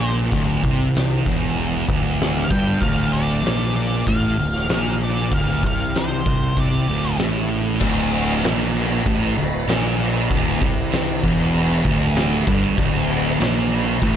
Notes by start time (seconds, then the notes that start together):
Already playing: A#1 A#2 D5
0.01 open hi-hat
0.32 D1 D2, kick, open hi-hat
0.64 C2 C3, kick, open hi-hat
0.95 snare, open hi-hat
1.26 E1 E2, kick, open hi-hat
1.57 open hi-hat
1.88 D1 D2, kick, open hi-hat
2.20 snare, open hi-hat
2.37 snare
2.44 F5
2.50 G1 G2 G5, kick, open hi-hat
2.81 D1 D2 F5, kick, open hi-hat
3.13 D5, open hi-hat
3.43 A#1 A#2, snare, open hi-hat
3.76 D5, open hi-hat
4.07 A1 A2 F5, kick, open hi-hat
4.37 D1 D2, open hi-hat
4.55 snare
4.68 A#1 A#2, snare, open hi-hat
5.00 D5, open hi-hat
5.31 D1 D2 F5, kick, open hi-hat
5.62 C2 C3, kick, open hi-hat
5.67 F5
5.94 C5, snare, open hi-hat
6.26 C2 C3, kick, open hi-hat
6.57 C2 C3 D5, kick, open hi-hat
6.87 D1 D2, open hi-hat
7.18 A1 A2, snare, open hi-hat
7.36 snare
7.50 open hi-hat
7.80 D1 D2, kick, crash
8.12 crash
8.43 A#1 A#2, snare, crash
8.75 crash
9.06 A1 A2, kick, crash
9.38 D1 D2, crash
9.68 A#1 A#2, snare, crash
9.99 crash
10.30 D1 D2, kick, crash
10.61 C2 C3, kick, crash
10.92 snare, crash
11.23 E1 E2, kick, crash
11.54 crash
11.85 D1 D2, kick, crash
12.15 snare, crash
12.47 G1 G2, kick, crash
12.78 D1 D2, kick, crash
13.10 crash
13.40 A#1 A#2, snare, crash
13.71 crash
14.01 A1 A2, kick, crash